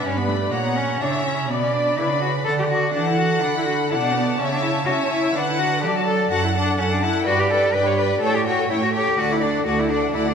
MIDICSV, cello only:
0, 0, Header, 1, 2, 480
1, 0, Start_track
1, 0, Tempo, 480384
1, 532, Time_signature, 4, 2, 24, 8
1, 10332, End_track
2, 0, Start_track
2, 0, Title_t, "Cello"
2, 0, Program_c, 0, 42
2, 44, Note_on_c, 0, 61, 59
2, 167, Note_on_c, 0, 59, 53
2, 182, Note_off_c, 0, 61, 0
2, 275, Note_on_c, 0, 57, 57
2, 290, Note_off_c, 0, 59, 0
2, 501, Note_off_c, 0, 57, 0
2, 507, Note_on_c, 0, 58, 64
2, 560, Note_off_c, 0, 58, 0
2, 648, Note_on_c, 0, 59, 63
2, 759, Note_on_c, 0, 61, 72
2, 774, Note_off_c, 0, 59, 0
2, 1005, Note_on_c, 0, 62, 66
2, 1020, Note_off_c, 0, 61, 0
2, 1248, Note_off_c, 0, 62, 0
2, 1254, Note_on_c, 0, 61, 58
2, 1493, Note_on_c, 0, 59, 63
2, 1508, Note_off_c, 0, 61, 0
2, 1629, Note_on_c, 0, 61, 52
2, 1644, Note_off_c, 0, 59, 0
2, 1730, Note_on_c, 0, 62, 60
2, 1745, Note_off_c, 0, 61, 0
2, 1979, Note_on_c, 0, 64, 56
2, 1994, Note_off_c, 0, 62, 0
2, 2095, Note_on_c, 0, 62, 56
2, 2110, Note_off_c, 0, 64, 0
2, 2205, Note_off_c, 0, 62, 0
2, 2211, Note_on_c, 0, 66, 57
2, 2291, Note_off_c, 0, 66, 0
2, 2448, Note_on_c, 0, 69, 77
2, 2574, Note_off_c, 0, 69, 0
2, 2586, Note_on_c, 0, 67, 64
2, 2634, Note_off_c, 0, 67, 0
2, 2691, Note_on_c, 0, 66, 72
2, 2927, Note_off_c, 0, 66, 0
2, 2933, Note_on_c, 0, 62, 65
2, 3066, Note_on_c, 0, 64, 60
2, 3081, Note_off_c, 0, 62, 0
2, 3179, Note_on_c, 0, 66, 62
2, 3194, Note_off_c, 0, 64, 0
2, 3412, Note_on_c, 0, 62, 72
2, 3427, Note_off_c, 0, 66, 0
2, 3540, Note_off_c, 0, 62, 0
2, 3562, Note_on_c, 0, 64, 60
2, 3651, Note_off_c, 0, 64, 0
2, 3657, Note_on_c, 0, 66, 66
2, 3737, Note_off_c, 0, 66, 0
2, 3904, Note_on_c, 0, 64, 59
2, 3953, Note_off_c, 0, 64, 0
2, 4025, Note_on_c, 0, 62, 60
2, 4137, Note_on_c, 0, 59, 54
2, 4152, Note_off_c, 0, 62, 0
2, 4382, Note_on_c, 0, 61, 58
2, 4397, Note_off_c, 0, 59, 0
2, 4503, Note_off_c, 0, 61, 0
2, 4509, Note_on_c, 0, 62, 62
2, 4606, Note_off_c, 0, 62, 0
2, 4612, Note_on_c, 0, 64, 68
2, 4692, Note_off_c, 0, 64, 0
2, 4846, Note_on_c, 0, 66, 70
2, 4926, Note_off_c, 0, 66, 0
2, 5107, Note_on_c, 0, 64, 67
2, 5347, Note_on_c, 0, 62, 70
2, 5362, Note_off_c, 0, 64, 0
2, 5466, Note_off_c, 0, 62, 0
2, 5480, Note_on_c, 0, 64, 58
2, 5580, Note_on_c, 0, 66, 66
2, 5595, Note_off_c, 0, 64, 0
2, 5822, Note_off_c, 0, 66, 0
2, 5830, Note_on_c, 0, 67, 65
2, 5945, Note_off_c, 0, 67, 0
2, 5966, Note_on_c, 0, 66, 61
2, 6060, Note_off_c, 0, 66, 0
2, 6066, Note_on_c, 0, 69, 69
2, 6300, Note_off_c, 0, 69, 0
2, 6307, Note_on_c, 0, 66, 68
2, 6422, Note_off_c, 0, 66, 0
2, 6434, Note_on_c, 0, 64, 64
2, 6479, Note_off_c, 0, 64, 0
2, 6548, Note_on_c, 0, 62, 73
2, 6778, Note_on_c, 0, 61, 77
2, 6793, Note_off_c, 0, 62, 0
2, 6900, Note_off_c, 0, 61, 0
2, 6905, Note_on_c, 0, 62, 65
2, 7024, Note_on_c, 0, 64, 73
2, 7039, Note_off_c, 0, 62, 0
2, 7257, Note_on_c, 0, 66, 87
2, 7272, Note_off_c, 0, 64, 0
2, 7387, Note_on_c, 0, 67, 74
2, 7402, Note_off_c, 0, 66, 0
2, 7497, Note_on_c, 0, 69, 74
2, 7511, Note_off_c, 0, 67, 0
2, 7727, Note_on_c, 0, 71, 72
2, 7742, Note_off_c, 0, 69, 0
2, 7859, Note_on_c, 0, 73, 68
2, 7874, Note_off_c, 0, 71, 0
2, 7972, Note_on_c, 0, 71, 69
2, 7987, Note_off_c, 0, 73, 0
2, 8198, Note_off_c, 0, 71, 0
2, 8204, Note_on_c, 0, 69, 86
2, 8343, Note_on_c, 0, 67, 70
2, 8358, Note_off_c, 0, 69, 0
2, 8447, Note_off_c, 0, 67, 0
2, 8453, Note_on_c, 0, 66, 76
2, 8687, Note_off_c, 0, 66, 0
2, 8693, Note_on_c, 0, 64, 81
2, 8742, Note_off_c, 0, 64, 0
2, 8818, Note_on_c, 0, 66, 72
2, 8934, Note_off_c, 0, 66, 0
2, 8942, Note_on_c, 0, 67, 74
2, 9173, Note_on_c, 0, 66, 81
2, 9188, Note_off_c, 0, 67, 0
2, 9310, Note_on_c, 0, 64, 68
2, 9325, Note_off_c, 0, 66, 0
2, 9421, Note_on_c, 0, 62, 64
2, 9436, Note_off_c, 0, 64, 0
2, 9650, Note_off_c, 0, 62, 0
2, 9656, Note_on_c, 0, 66, 73
2, 9786, Note_on_c, 0, 64, 66
2, 9801, Note_off_c, 0, 66, 0
2, 9889, Note_on_c, 0, 62, 66
2, 9904, Note_off_c, 0, 64, 0
2, 10129, Note_on_c, 0, 64, 72
2, 10144, Note_off_c, 0, 62, 0
2, 10268, Note_on_c, 0, 62, 58
2, 10283, Note_off_c, 0, 64, 0
2, 10332, Note_off_c, 0, 62, 0
2, 10332, End_track
0, 0, End_of_file